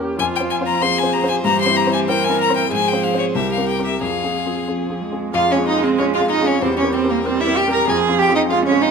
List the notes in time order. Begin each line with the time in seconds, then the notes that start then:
Already playing: A#3 G4 C#5
0.00 C#4 G4 A#4
0.19 F2 F3 F4 C5 G#5
0.36 G5
0.40 C4 F4 C5
0.50 G#5
0.61 C4 F4 C5
0.66 A#5
0.81 C4 F4 G#4 C5 C6
0.98 G#5
1.03 C4 F4 C5
1.13 A#5
1.23 C4 F4 C5
1.29 G#5
1.44 G2 E3 G4 A#5
1.61 C6
1.65 C4 E4 C5
1.76 A#5
1.86 C4 E4 C5
1.93 G#5
2.08 C4 E4 A#4 C5 G5
2.24 G#5
2.29 C4 E4 C5
2.40 A#5
2.50 C4 E4 C5
2.56 G5
2.70 G#2 F3 G#4 C5 G#5
2.88 G5
2.92 C4 F4 C5
3.03 F5
3.13 C4 F4 C5
3.19 C#5
3.35 C2 G3 G4 A#4 E5
3.52 F5
3.57 C4 G4 A#4
3.68 G5
3.79 C4 G4 A#4
3.85 E5
4.01 F2 F3 G#4 F5
4.24 C4 F4 G#4
4.46 C4 F4 G#4
4.67 F3 C4 F4 G#4
4.90 C4 F4 G#4
5.01 G#3
5.12 C4 F4 G#4
5.34 F2 G#3 F4 F5
5.50 C#4 C#5
5.56 C4 F4 G#4
5.67 D#4 D#5
5.78 C4 F4 G#4
5.82 C4 C5
5.98 C4 C#4 F4 G#4 C#5
6.14 F4 F5
6.20 C4 F4 G#4
6.29 D#4 D#5
6.41 C4 C#4 F4 G#4
6.46 C#4 C#5
6.60 E2 G3 C4 C5
6.77 C#4 C#5
6.83 C4 G4 A#4
6.93 C4 C5
7.04 C4 G4 A#4
7.09 A#3 A#4
7.25 G3 C4 G4 A#4 C5
7.41 E4 E5
7.46 C4 G4 A#4
7.56 G4 G5
7.67 C4 G4 A#4
7.72 A#4 A#5
7.87 F2 F3 G#4 G#5
8.09 C4 F4 G#4
8.19 G4 G5 G#5
8.30 C4 F4 G#4
8.36 D#4 D#5
8.50 G#3 C4 F4 G#4 F5
8.66 C#4 C#5
8.71 C4 F4 G#4
8.81 D#4 D#5 G#5